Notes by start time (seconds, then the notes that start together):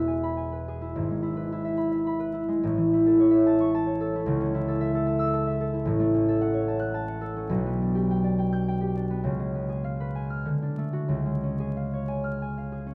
Already playing: E1 E2 B2 G#3 E4 G#4 B4 E5
0.08 G#5
0.23 B5
0.37 G#5
0.52 B4
0.68 G#4
0.81 E4
0.95 G#1 G#2
1.10 G#3
1.22 E4
1.36 B4
1.52 E4
1.65 E5
1.78 B5
1.92 E5
2.07 B5
2.19 B4
2.33 E4
2.48 G#3
2.63 A1 A2
2.77 E3
2.93 E4
3.06 A4
3.20 C#5
3.31 E5
3.46 A5
3.60 C#6
3.75 A5
3.86 C#5
4.01 A4
4.15 E4
4.26 C#2 C#3
4.40 C#4
4.54 E4
4.68 A4
4.81 E5
4.95 A4
5.07 A5
5.19 E6
5.34 A5
5.47 E5
5.60 A4
5.74 E4
5.85 A1 A2
6.00 A3
6.14 C#4
6.28 A4
6.41 F#5
6.54 C#5
6.68 A5
6.80 F#6
6.94 A5
7.08 F#5
7.21 A4
7.36 C#4
7.49 B1 B2
7.66 B3
7.82 D4
7.95 G4
8.11 G5
8.24 D5
8.39 G5
8.53 G6
8.68 G5
8.81 G4
8.97 D4
9.10 B3
9.24 C#2 C#3
9.39 G#3
9.55 B3
9.69 G#4
9.84 F5
10.00 B4
10.15 G#5
10.30 F6
10.45 D3
10.63 D4
10.78 A3
10.93 F#4
11.08 C#2 C#3
11.25 G#3
11.43 C#4
11.60 G#4
11.77 F5
11.93 C#5
12.08 G#5
12.24 F6
12.42 G#5
12.58 F5
12.72 G#4
12.87 C#4